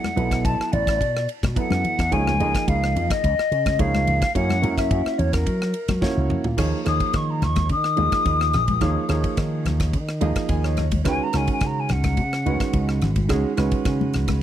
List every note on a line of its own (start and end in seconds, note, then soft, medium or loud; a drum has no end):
0.00 0.46 F#5 loud
0.04 cross-stick medium
0.04 high conga medium
0.16 0.42 B1 medium
0.16 0.96 F#3 medium
0.16 0.96 B3 medium
0.16 0.96 E4 medium
0.16 0.96 A4 medium
0.16 0.97 B4 medium
0.16 ride medium
0.31 kick medium
0.31 cross-stick medium
0.31 ride medium
0.45 0.58 B1 medium
0.45 0.74 A5 medium
0.45 kick loud
0.45 ride medium
0.60 muted slap bass stroke soft
0.60 cross-stick medium
0.72 0.98 A1 medium
0.72 1.29 D5 medium
0.72 ride medium
0.72 low conga medium
0.87 kick medium
0.87 cross-stick medium
0.87 ride medium
1.01 1.26 B2 medium
1.01 kick medium
1.01 ride medium
1.17 cross-stick medium
1.29 ride medium
1.43 1.55 B2 medium
1.43 kick medium
1.43 cross-stick medium
1.43 ride medium
1.43 high conga medium
1.56 1.96 F#3 medium
1.56 1.97 B3 medium
1.56 1.97 E4 medium
1.56 1.97 A4 medium
1.56 1.97 B4 medium
1.56 2.14 F#5 loud
1.56 muted slap bass stroke soft
1.56 kick loud
1.56 ride medium
1.71 1.83 F#2 medium
1.71 cross-stick medium
1.71 high conga medium
1.84 muted slap bass stroke soft
1.84 ride medium
1.84 low conga medium
1.99 2.11 E2 medium
1.99 kick medium
1.99 cross-stick medium
1.99 ride medium
2.11 2.38 C#2 loud
2.11 2.32 F3 medium
2.11 2.32 A#3 medium
2.11 2.32 D#4 medium
2.11 2.32 G#4 medium
2.11 2.32 C#5 medium
2.11 2.70 G#5 loud
2.11 kick medium
2.11 ride medium
2.27 cross-stick medium
2.27 high conga medium
2.40 2.54 C#2 medium
2.40 3.20 F3 medium
2.40 3.20 A#3 medium
2.40 3.20 D#4 medium
2.40 3.20 G#4 medium
2.40 3.20 D#5 medium
2.40 ride medium
2.55 kick medium
2.55 cross-stick medium
2.55 ride medium
2.68 2.94 C#2 loud
2.68 3.12 F5 medium
2.68 kick medium
2.68 ride medium
2.84 cross-stick medium
2.96 3.09 F2 medium
2.96 ride medium
2.96 low conga medium
3.10 3.82 D#5 loud
3.10 kick medium
3.10 cross-stick medium
3.10 ride medium
3.24 3.37 C#2 medium
3.24 kick medium
3.24 ride medium
3.39 cross-stick medium
3.52 3.77 C#3 medium
3.52 ride medium
3.66 kick medium
3.66 cross-stick medium
3.66 ride medium
3.66 high conga medium
3.79 4.05 C#2 medium
3.79 4.20 F3 medium
3.79 4.20 A#3 medium
3.79 4.20 D#4 medium
3.79 4.20 G#4 medium
3.79 4.20 C#5 medium
3.79 4.34 F5 medium
3.79 kick loud
3.79 ride medium
3.95 cross-stick medium
3.95 high conga medium
4.07 4.21 C#2 medium
4.07 ride medium
4.07 low conga medium
4.22 kick medium
4.22 cross-stick medium
4.22 ride medium
4.35 4.61 F#2 loud
4.35 4.55 A#3 medium
4.35 4.55 C#4 medium
4.35 4.56 E4 medium
4.35 4.56 F#4 medium
4.35 4.56 C#5 medium
4.35 4.75 F#5 loud
4.35 kick medium
4.35 ride medium
4.50 cross-stick medium
4.50 high conga medium
4.62 4.89 F#2 medium
4.62 5.43 A#3 medium
4.62 5.43 C#4 medium
4.62 5.43 E4 medium
4.62 5.43 F#4 medium
4.62 5.43 A#4 medium
4.62 ride medium
4.62 high conga medium
4.77 5.20 E5 medium
4.77 kick medium
4.77 cross-stick medium
4.77 ride medium
4.91 5.04 F#2 medium
4.91 kick loud
4.91 ride medium
5.06 muted slap bass stroke soft
5.06 cross-stick medium
5.18 5.45 E2 medium
5.18 5.34 C#5 medium
5.18 ride medium
5.18 low conga medium
5.33 6.17 A#4 medium
5.33 kick medium
5.33 cross-stick medium
5.33 ride medium
5.46 5.73 F#3 medium
5.46 kick medium
5.46 ride medium
5.62 cross-stick medium
5.74 ride medium
5.88 6.01 F#3 medium
5.88 kick medium
5.88 cross-stick medium
5.88 ride medium
5.88 high conga medium
6.01 6.43 A#3 medium
6.01 6.43 C#4 medium
6.01 6.43 E4 medium
6.01 6.43 F#4 medium
6.01 6.43 C#5 medium
6.01 muted slap bass stroke soft
6.01 kick loud
6.01 snare medium
6.01 low conga medium
6.17 6.30 C#2 medium
6.30 mid tom medium
6.30 low conga medium
6.44 6.58 A#2 medium
6.44 floor tom medium
6.57 6.72 D#2 loud
6.57 6.78 F3 medium
6.57 6.79 A#3 medium
6.57 6.79 D#4 medium
6.57 6.79 G#4 medium
6.57 6.79 C#5 medium
6.57 kick medium
6.57 cross-stick medium
6.57 crash medium
6.85 7.00 D#2 medium
6.85 7.66 F3 medium
6.85 7.66 A#3 medium
6.85 7.66 D#4 medium
6.85 7.66 G#4 medium
6.85 7.67 C#5 medium
6.85 7.18 D#6 medium
6.85 cross-stick medium
6.85 ride medium
7.00 kick medium
7.00 ride medium
7.13 7.44 D#3 medium
7.13 7.32 C#6 medium
7.13 kick loud
7.13 cross-stick medium
7.13 ride medium
7.30 7.45 A#5 medium
7.42 7.71 D#2 medium
7.42 7.70 C#6 medium
7.42 cross-stick medium
7.42 ride medium
7.42 low conga medium
7.56 kick medium
7.56 cross-stick medium
7.56 ride medium
7.56 high conga medium
7.69 7.96 D#3 medium
7.69 9.35 D#6 loud
7.69 kick medium
7.69 ride medium
7.84 cross-stick medium
7.96 8.12 D#2 medium
7.96 8.58 F3 medium
7.96 8.58 A#3 medium
7.96 8.58 D#4 medium
7.96 8.58 G#4 medium
7.96 8.58 D#5 medium
7.96 ride medium
7.96 high conga medium
8.12 kick medium
8.12 cross-stick medium
8.12 ride medium
8.25 8.52 D#2 medium
8.25 kick loud
8.25 ride medium
8.41 cross-stick medium
8.53 8.80 A#1 medium
8.53 cross-stick medium
8.53 ride medium
8.53 low conga medium
8.68 kick medium
8.68 ride medium
8.68 high conga medium
8.81 8.96 D#2 loud
8.81 9.02 F3 medium
8.81 9.02 A#3 medium
8.81 9.02 D#4 medium
8.81 9.03 G#4 medium
8.81 9.03 C#5 medium
8.81 kick medium
8.81 cross-stick medium
8.81 ride medium
9.08 9.23 D#2 medium
9.08 9.90 F3 medium
9.08 9.90 A#3 medium
9.08 9.90 D#4 medium
9.08 9.90 G#4 medium
9.08 9.90 C#5 medium
9.08 cross-stick medium
9.08 ride medium
9.24 kick medium
9.24 ride medium
9.37 9.67 D#3 medium
9.37 kick loud
9.37 cross-stick medium
9.37 ride medium
9.65 9.95 D#2 medium
9.65 cross-stick medium
9.65 ride medium
9.65 low conga medium
9.80 kick medium
9.80 cross-stick medium
9.80 ride medium
9.93 10.20 D#3 medium
9.93 kick medium
9.93 ride medium
10.09 cross-stick medium
10.21 10.35 D#2 medium
10.21 10.82 F3 medium
10.21 10.82 A#3 medium
10.21 10.82 D#4 medium
10.21 10.82 G#4 medium
10.21 10.83 D#5 medium
10.21 10.48 F5 medium
10.21 ride medium
10.21 high conga medium
10.36 kick medium
10.36 cross-stick medium
10.36 ride medium
10.49 10.76 D#2 medium
10.49 10.63 G#5 medium
10.49 kick loud
10.49 ride medium
10.64 11.03 C#5 medium
10.64 cross-stick medium
10.77 11.04 D#2 medium
10.77 cross-stick medium
10.77 ride medium
10.77 low conga medium
10.91 kick medium
10.91 ride medium
10.91 high conga medium
11.04 11.19 C#2 loud
11.04 11.26 D#3 medium
11.04 11.26 G#3 medium
11.04 11.26 C#4 medium
11.04 11.26 F#4 medium
11.04 11.26 B4 medium
11.04 11.25 G#5 medium
11.04 kick medium
11.04 cross-stick medium
11.04 ride medium
11.23 11.38 A#5 medium
11.33 11.48 C#2 medium
11.33 12.14 D#3 medium
11.33 12.14 G#3 medium
11.33 12.14 C#4 medium
11.33 12.14 F#4 medium
11.33 12.14 A#4 medium
11.33 cross-stick medium
11.33 ride medium
11.37 11.49 G#5 medium
11.47 kick medium
11.47 ride medium
11.52 11.68 G#5 medium
11.61 11.91 C#3 medium
11.61 kick loud
11.61 cross-stick medium
11.61 ride medium
11.66 11.81 A#5 medium
11.80 11.94 G#5 medium
11.89 12.19 C#2 medium
11.89 13.00 F#5 medium
11.89 cross-stick medium
11.89 ride medium
11.89 low conga medium
12.04 kick medium
12.04 cross-stick medium
12.04 ride medium
12.04 high conga medium
12.17 12.44 C#3 medium
12.17 kick medium
12.17 ride medium
12.33 cross-stick medium
12.46 12.60 C#2 medium
12.46 13.06 D#3 medium
12.46 13.06 G#3 medium
12.46 13.06 C#4 medium
12.46 13.07 F#4 medium
12.46 13.07 B4 medium
12.46 ride medium
12.46 high conga medium
12.60 kick medium
12.60 cross-stick medium
12.60 ride medium
12.73 13.00 C#2 medium
12.73 kick loud
12.73 ride medium
12.89 cross-stick medium
13.01 13.28 G#1 medium
13.01 cross-stick medium
13.01 ride medium
13.01 low conga medium
13.16 kick medium
13.16 ride medium
13.16 high conga medium
13.29 13.43 C#2 loud
13.29 13.50 D#3 medium
13.29 13.50 G#3 medium
13.29 13.50 C#4 medium
13.29 13.50 F#4 medium
13.29 13.50 G#4 medium
13.29 kick medium
13.29 cross-stick medium
13.29 ride medium
13.56 13.71 C#2 medium
13.56 14.38 D#3 medium
13.56 14.38 G#3 medium
13.56 14.38 C#4 medium
13.56 14.38 F#4 medium
13.56 14.38 B4 medium
13.56 cross-stick medium
13.56 ride medium
13.71 kick medium
13.71 ride medium
13.85 14.15 C#3 medium
13.85 kick loud
13.85 cross-stick medium
13.85 ride medium
14.01 high conga medium
14.13 14.43 C#2 medium
14.13 cross-stick medium
14.13 ride medium
14.13 low conga medium
14.28 kick medium
14.28 cross-stick medium
14.28 ride medium
14.28 high conga medium